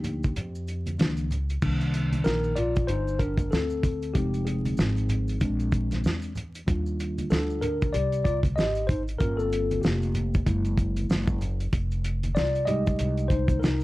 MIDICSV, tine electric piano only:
0, 0, Header, 1, 2, 480
1, 0, Start_track
1, 0, Tempo, 631579
1, 1236, Time_signature, 4, 2, 24, 8
1, 10516, End_track
2, 0, Start_track
2, 0, Title_t, "Tine electric piano"
2, 0, Program_c, 0, 4
2, 0, Note_on_c, 0, 53, 40
2, 0, Note_on_c, 0, 58, 45
2, 0, Note_on_c, 0, 62, 54
2, 0, Note_on_c, 0, 63, 49
2, 0, Note_on_c, 0, 67, 81
2, 242, Note_off_c, 0, 63, 0
2, 243, Note_off_c, 0, 53, 0
2, 245, Note_off_c, 0, 58, 0
2, 247, Note_off_c, 0, 62, 0
2, 712, Note_off_c, 0, 67, 0
2, 747, Note_on_c, 0, 51, 46
2, 751, Note_on_c, 0, 53, 42
2, 752, Note_on_c, 0, 58, 41
2, 755, Note_on_c, 0, 62, 50
2, 967, Note_off_c, 0, 51, 0
2, 969, Note_off_c, 0, 53, 0
2, 970, Note_off_c, 0, 58, 0
2, 971, Note_off_c, 0, 62, 0
2, 1229, Note_on_c, 0, 51, 56
2, 1233, Note_on_c, 0, 58, 45
2, 1239, Note_on_c, 0, 62, 55
2, 1704, Note_on_c, 0, 70, 96
2, 1723, Note_on_c, 0, 63, 69
2, 1922, Note_off_c, 0, 51, 0
2, 1924, Note_off_c, 0, 58, 0
2, 1927, Note_off_c, 0, 62, 0
2, 1943, Note_off_c, 0, 63, 0
2, 1943, Note_on_c, 0, 74, 93
2, 1958, Note_off_c, 0, 70, 0
2, 1961, Note_on_c, 0, 65, 82
2, 2172, Note_off_c, 0, 74, 0
2, 2182, Note_off_c, 0, 65, 0
2, 2184, Note_on_c, 0, 72, 108
2, 2200, Note_on_c, 0, 63, 85
2, 2422, Note_off_c, 0, 63, 0
2, 2424, Note_on_c, 0, 70, 88
2, 2437, Note_off_c, 0, 72, 0
2, 2442, Note_on_c, 0, 62, 79
2, 2653, Note_off_c, 0, 70, 0
2, 2663, Note_off_c, 0, 62, 0
2, 2666, Note_on_c, 0, 69, 81
2, 2684, Note_on_c, 0, 60, 67
2, 3130, Note_off_c, 0, 60, 0
2, 3144, Note_on_c, 0, 67, 85
2, 3149, Note_on_c, 0, 53, 57
2, 3156, Note_on_c, 0, 56, 47
2, 3159, Note_on_c, 0, 63, 53
2, 3160, Note_on_c, 0, 60, 69
2, 3165, Note_off_c, 0, 69, 0
2, 3381, Note_off_c, 0, 60, 0
2, 3384, Note_on_c, 0, 68, 70
2, 3397, Note_off_c, 0, 67, 0
2, 3399, Note_on_c, 0, 60, 57
2, 4079, Note_off_c, 0, 68, 0
2, 4082, Note_off_c, 0, 53, 0
2, 4086, Note_off_c, 0, 56, 0
2, 4087, Note_off_c, 0, 60, 0
2, 4087, Note_off_c, 0, 63, 0
2, 4107, Note_on_c, 0, 56, 61
2, 4112, Note_on_c, 0, 60, 54
2, 4116, Note_on_c, 0, 62, 64
2, 4801, Note_off_c, 0, 56, 0
2, 4804, Note_off_c, 0, 60, 0
2, 4805, Note_off_c, 0, 62, 0
2, 5065, Note_on_c, 0, 55, 47
2, 5071, Note_on_c, 0, 62, 50
2, 5076, Note_on_c, 0, 65, 55
2, 5551, Note_off_c, 0, 62, 0
2, 5551, Note_on_c, 0, 69, 85
2, 5560, Note_on_c, 0, 62, 66
2, 5760, Note_off_c, 0, 55, 0
2, 5765, Note_off_c, 0, 65, 0
2, 5781, Note_off_c, 0, 62, 0
2, 5787, Note_on_c, 0, 70, 89
2, 5796, Note_on_c, 0, 62, 61
2, 5801, Note_off_c, 0, 69, 0
2, 6019, Note_off_c, 0, 62, 0
2, 6024, Note_on_c, 0, 74, 100
2, 6035, Note_on_c, 0, 67, 83
2, 6039, Note_off_c, 0, 70, 0
2, 6255, Note_off_c, 0, 74, 0
2, 6258, Note_off_c, 0, 67, 0
2, 6265, Note_on_c, 0, 74, 100
2, 6277, Note_on_c, 0, 65, 82
2, 6375, Note_off_c, 0, 74, 0
2, 6385, Note_off_c, 0, 65, 0
2, 6503, Note_on_c, 0, 75, 98
2, 6517, Note_on_c, 0, 67, 77
2, 6732, Note_off_c, 0, 75, 0
2, 6740, Note_off_c, 0, 67, 0
2, 6741, Note_on_c, 0, 72, 89
2, 6755, Note_on_c, 0, 63, 74
2, 6852, Note_off_c, 0, 72, 0
2, 6863, Note_off_c, 0, 63, 0
2, 6981, Note_on_c, 0, 70, 95
2, 6985, Note_on_c, 0, 58, 49
2, 6990, Note_on_c, 0, 61, 77
2, 6996, Note_on_c, 0, 65, 58
2, 7122, Note_on_c, 0, 69, 94
2, 7128, Note_off_c, 0, 61, 0
2, 7135, Note_off_c, 0, 70, 0
2, 7139, Note_on_c, 0, 60, 68
2, 7444, Note_off_c, 0, 69, 0
2, 7453, Note_off_c, 0, 60, 0
2, 7461, Note_on_c, 0, 67, 68
2, 7469, Note_off_c, 0, 58, 0
2, 7478, Note_on_c, 0, 58, 56
2, 7686, Note_off_c, 0, 65, 0
2, 7918, Note_off_c, 0, 67, 0
2, 7927, Note_off_c, 0, 58, 0
2, 7949, Note_on_c, 0, 56, 51
2, 7952, Note_on_c, 0, 58, 51
2, 7958, Note_on_c, 0, 64, 65
2, 8642, Note_off_c, 0, 56, 0
2, 8644, Note_off_c, 0, 58, 0
2, 8647, Note_off_c, 0, 64, 0
2, 9383, Note_on_c, 0, 74, 104
2, 9400, Note_on_c, 0, 65, 75
2, 9617, Note_on_c, 0, 75, 94
2, 9621, Note_off_c, 0, 65, 0
2, 9627, Note_on_c, 0, 55, 52
2, 9633, Note_on_c, 0, 56, 50
2, 9636, Note_on_c, 0, 63, 60
2, 9637, Note_off_c, 0, 74, 0
2, 9638, Note_on_c, 0, 67, 83
2, 10086, Note_off_c, 0, 67, 0
2, 10095, Note_on_c, 0, 72, 97
2, 10108, Note_off_c, 0, 63, 0
2, 10118, Note_on_c, 0, 63, 72
2, 10121, Note_off_c, 0, 75, 0
2, 10321, Note_off_c, 0, 55, 0
2, 10324, Note_off_c, 0, 56, 0
2, 10328, Note_off_c, 0, 72, 0
2, 10332, Note_on_c, 0, 70, 81
2, 10340, Note_off_c, 0, 63, 0
2, 10356, Note_on_c, 0, 63, 72
2, 10516, Note_off_c, 0, 63, 0
2, 10516, Note_off_c, 0, 70, 0
2, 10516, End_track
0, 0, End_of_file